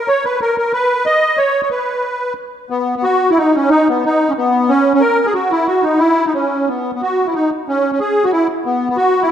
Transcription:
0.08 C#5
0.25 B4
0.41 A#4
0.58 A#4
0.73 B4
1.06 D#5
1.37 C#5
1.63 C#5
1.71 B4
2.70 B3
2.96 B3
3.04 F#4
3.30 E4
3.38 D#4
3.56 C#4
3.70 D#4
3.89 B3
4.05 D#4
4.29 C#4
4.38 B3
4.69 C#4
4.94 C#4
5.01 A#4
5.26 G#4
5.34 F#4
5.51 E4
5.67 F#4
5.83 D#4
5.99 E4
6.26 D#4
6.34 C#4
6.68 B3
6.95 B3
7.02 F#4
7.26 E4
7.35 D#4
7.68 C#4
7.92 C#4
8.00 G#4
8.24 F#4
8.32 E4
8.65 B3
8.90 B3
8.97 F#4
9.22 E4

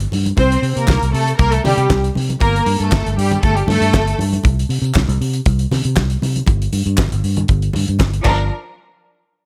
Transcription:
0.00 closed hi-hat
0.12 G2, open hi-hat, high conga
0.26 closed hi-hat, high conga
0.37 C2 C4 C5, kick, closed hi-hat, muted conga
0.52 closed hi-hat
0.62 C3, open hi-hat
0.75 C3 A#3 A#4, closed hi-hat
0.88 C2, kick, snare, clap, high conga
1.02 C2, closed hi-hat
1.13 C3 A3 A4, open hi-hat
1.27 closed hi-hat
1.37 C2 A#3 A#4, kick, closed hi-hat
1.51 A3 A4, closed hi-hat
1.64 C3 G3 G4, open hi-hat, muted conga, low conga
1.77 C3, closed hi-hat
1.89 C2, kick, snare, clap, high conga
2.04 closed hi-hat
2.15 C3, open hi-hat, high conga
2.29 closed hi-hat, high conga
2.40 G1 A#3 A#4, kick, closed hi-hat, muted conga
2.56 closed hi-hat
2.66 G2, open hi-hat, muted conga
2.79 G2 A3 A4, closed hi-hat
2.92 G1, kick, snare, clap, high conga
3.06 G1, closed hi-hat
3.17 G2 G3 G4, open hi-hat
3.31 closed hi-hat, low conga
3.42 G1 A3 A4, kick, closed hi-hat
3.55 G3 G4, closed hi-hat
3.67 G2 A3 A4, snare, open hi-hat, muted conga, low conga
3.81 G2, closed hi-hat
3.93 G1, kick, snare, clap, high conga
4.07 closed hi-hat
4.18 G2, open hi-hat, high conga
4.33 closed hi-hat, high conga
4.43 C2, kick, closed hi-hat, muted conga
4.59 closed hi-hat
4.69 C3, open hi-hat
4.82 C3, closed hi-hat
4.94 C2, kick, snare, clap, high conga
5.09 C2, closed hi-hat
5.21 C3, open hi-hat
5.33 closed hi-hat
5.46 C2, kick, closed hi-hat
5.59 closed hi-hat
5.71 C3, snare, open hi-hat, muted conga, low conga
5.84 C3, closed hi-hat
5.96 C2, kick, snare, clap, high conga
6.10 closed hi-hat
6.22 C3, open hi-hat, high conga
6.36 closed hi-hat, high conga
6.46 G1, kick, closed hi-hat, muted conga
6.62 closed hi-hat
6.73 G2, open hi-hat, muted conga
6.86 G2, closed hi-hat
6.97 G1, kick, snare, clap, high conga
7.12 G1, closed hi-hat
7.24 G2, open hi-hat
7.36 closed hi-hat, low conga
7.48 G1, kick, closed hi-hat
7.62 closed hi-hat
7.73 G2, open hi-hat, muted conga, low conga
7.88 G2, closed hi-hat
7.99 G1, kick, snare, clap, high conga
8.13 closed hi-hat
8.24 G1 F3 D4 A#4, kick, clap, crash, muted conga

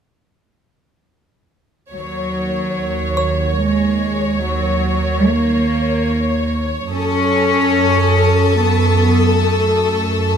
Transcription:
1.91 D#2 F#3 C#5
3.17 C#5 C#6
3.58 G#3
4.43 F#3
5.25 A#3
6.91 F#2 C#4 A4 C#6 D#6
8.58 B3 E6
9.42 A3

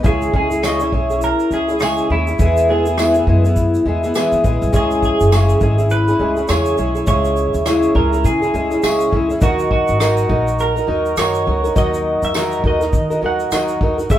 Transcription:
0.03 C#2 C#3 G#3 C#4 E4 G#4, kick, shaker
0.22 shaker
0.33 C#2 G#3 C#4 E4 G#4, kick
0.50 C#4 E4 G#4, shaker
0.63 C#3 G#3 C#4 E4 G#4 D#5, cross-stick, tambourine, shaker
0.80 C#4 E4 G#4 C#5, shaker
0.92 B1 G#3 C#4 E4 G#4, kick
1.10 C#4 E4 G#4, shaker
1.22 A#4, shaker
1.40 shaker
1.51 C#2 G#3 C#4 E4 G#4, shaker
1.69 C#4 E4 G#4, shaker
1.79 C#3 G#3 C#4 E4 G#4, cross-stick, tambourine, shaker
1.97 shaker
2.10 D#2 G#3 C#4 E4 G#4
2.27 C#4 E4 G#4, shaker
2.39 E2 E3 G#3 B3 E4 G#4, kick, shaker
2.57 shaker
2.69 G#3 B3 E4 G#4
2.86 B3 E4 G#4, shaker
2.98 E3 G#3 B3 E4 G#4, cross-stick, tambourine, shaker
3.15 B3 E4 G#4, shaker
3.27 F#2 G#3 B3 E4 G#4, kick
3.44 B3 E4 G#4, shaker
3.56 kick, shaker
3.74 shaker
3.86 E2 G#3 B3 E4 G#4
4.04 B3 E4 G#4, shaker
4.15 E3 G#3 B3 E4 G#4, cross-stick, tambourine, shaker
4.32 D#2, shaker
4.43 A#1 G#3 B3 E4 G#4, kick, shaker
4.62 B1, shaker
4.72 C#2 C#3 G#3 C#4 E4 G#4, kick, shaker
4.91 shaker
5.03 G#4, kick, shaker
5.20 F#1, shaker
5.31 C#3 G#3 C#4 E4 G#4, cross-stick, tambourine, shaker
5.49 shaker
5.61 G#1 G#3 C#4 E4 G#4, kick, shaker
5.78 C#4 E4 G#4, shaker
5.90 B4, shaker
6.08 C#4 E4 G#4, shaker
6.19 C#2 G#3 C#4 E4 G#4
6.37 C#4 E4 G#4, shaker
6.48 E2 C#3 G#3 C#4 E4 G#4 C#5, cross-stick, tambourine, shaker
6.65 shaker
6.77 B1 G#3 C#4 E4 G#4, shaker
6.95 C#4 E4 G#4, shaker
7.06 C#2 C#3 G#3 C#4 E4 G#4 C#5, kick, shaker
7.25 shaker
7.37 shaker
7.54 D#2, shaker
7.65 C#3 G#3 C#4 E4 G#4, cross-stick, tambourine, shaker
7.83 shaker
7.95 C#2 G#3 C#4 E4 G#4 A#4, kick
8.12 C#4 E4 G#4, shaker
8.24 C#3 G#4, kick, shaker
8.42 C#4 E4 G#4, shaker
8.54 C#2 G#3 C#4 E4 G#4, shaker
8.71 C#4 E4 G#4, shaker
8.82 C#2 C#3 G#3 C#4 E4 G#4, cross-stick, tambourine, shaker
9.00 shaker
9.12 C#2 G#3 C#4 E4 G#4, kick
9.29 C#4 E4 G#4, shaker
9.40 D#2 D#3 F#3 D#4 F#4 A#4, kick, shaker
9.59 shaker
9.71 F#4, kick
9.88 G#1, shaker
9.99 D#3 F#3 D#4 F#4 A#4, cross-stick, tambourine, shaker
10.17 shaker
10.29 A#1 F#3 D#4 F#4 A#4, kick
10.48 shaker
10.59 A#4, shaker
10.76 D#4 F#4 A#4, shaker
10.87 D#2 F#3 D#4 F#4 A#4
11.06 shaker
11.17 F#2 D#3 F#3 D#4 F#4 A#4 C#5, cross-stick, tambourine, shaker
11.34 shaker
11.46 C#2 F#3 D#4 F#4 A#4
11.64 D#4 F#4 A#4, shaker
11.75 D#2 D#3 F#3 D#4 F#4 A#4 D#5, kick, shaker
11.94 shaker
12.23 E2 E5, shaker
12.34 D#3 F#3 D#4 F#4 A#4, cross-stick, tambourine, shaker
12.52 shaker
12.64 D#2 F#3 D#4 F#4 A#4 D#5, kick
12.80 D#4 F#4 A#4, cross-stick, shaker
12.93 D#3, kick, shaker
13.10 D#4 F#4 A#4, shaker
13.22 D#2 F#3 D#4 F#4 A#4
13.26 F#5
13.40 shaker
13.51 D#2 D#3 F#3 D#4 F#4 A#4, cross-stick, tambourine, shaker
13.68 shaker
13.81 D#2 F#3 D#4 F#4 A#4, kick
13.98 D#4 F#4 A#4, shaker
14.10 C#2 C#3 G#3 C#4 E4 G#4 E5, kick, shaker

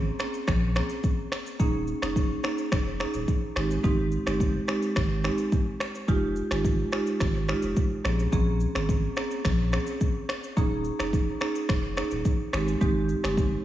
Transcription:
Already playing: G#1
0.19 A#3 C4 C#4 G#4, finger snap, cross-stick, shaker
0.34 shaker
0.48 A#1, finger snap, kick, cross-stick, shaker
0.75 A#3 C4 C#4 G#4, finger snap, cross-stick, shaker
0.89 shaker
1.04 kick, shaker
1.32 finger snap, cross-stick, shaker
1.47 shaker
1.59 D#1 A#3 C#4 D#4 G#4, kick, shaker
1.87 shaker
2.02 F1 A#3 C#4 D#4 G#4, finger snap, cross-stick, shaker
2.16 kick, shaker
2.44 A#3 C#4 D#4 G#4, finger snap, cross-stick, shaker
2.58 shaker
2.72 F1, finger snap, kick, cross-stick, shaker
3.00 A#3 C#4 D#4 G#4, finger snap, cross-stick, shaker
3.14 D#1, shaker
3.28 kick, shaker
3.56 G#1 G#3 C4 D#4 G4, finger snap, cross-stick, shaker
3.71 shaker
3.84 G#1 G#3 C4 D#4 G4, kick, shaker
4.12 shaker
4.26 G1 G#3 C4 D#4 G4, finger snap, cross-stick, shaker
4.40 kick, shaker
4.68 G#3 C4 D#4 G4, finger snap, cross-stick, shaker
4.82 shaker
4.96 G#1, finger snap, kick, cross-stick, shaker
5.24 G#3 C4 D#4 G4, finger snap, cross-stick, shaker
5.38 shaker
5.52 kick, shaker
5.80 finger snap, cross-stick, shaker
5.95 shaker
6.08 F1 G#3 D#4 F4 G4, kick, shaker
6.36 shaker
6.51 G#1 G#3 D#4 F4 G4, finger snap, cross-stick, shaker
6.65 kick, shaker
6.92 G#3 D#4 F4 G4, finger snap, cross-stick, shaker
7.07 shaker
7.20 G#1, finger snap, kick, cross-stick, shaker
7.48 G#3 D#4 F4 G4, finger snap, cross-stick, shaker
7.62 F1, shaker
7.76 kick, shaker
8.04 A#1 A#3 C4 C#4 G#4, finger snap, cross-stick, shaker
8.19 shaker
8.32 A#1 A#3 C4 C#4 G#4, kick, shaker
8.60 shaker
8.75 G#1 A#3 C4 C#4 G#4, finger snap, cross-stick, shaker
8.89 kick, shaker
9.16 A#3 C4 C#4 G#4, finger snap, cross-stick, shaker
9.31 shaker
9.45 A#1, finger snap, kick, cross-stick, shaker
9.72 A#3 C4 C#4 G#4, finger snap, cross-stick, shaker
9.87 shaker
10.01 kick, shaker
10.29 finger snap, cross-stick, shaker
10.44 shaker
10.57 D#1 A#3 C#4 D#4 G#4, kick, shaker
10.85 shaker
10.99 F1 A#3 C#4 D#4 G#4, finger snap, cross-stick, shaker
11.13 kick, shaker
11.41 A#3 C#4 D#4 G#4, finger snap, cross-stick, shaker
11.55 shaker
11.69 F1, finger snap, kick, cross-stick, shaker
11.97 A#3 C#4 D#4 G#4, finger snap, cross-stick, shaker
12.11 D#1, shaker
12.25 kick, shaker
12.53 G#1 G#3 C4 D#4 G4, finger snap, cross-stick, shaker
12.68 shaker
12.81 G#1 G#3 C4 D#4 G4, kick, shaker
13.09 shaker
13.23 G1 G#3 C4 D#4 G4, finger snap, cross-stick, shaker
13.37 kick, shaker

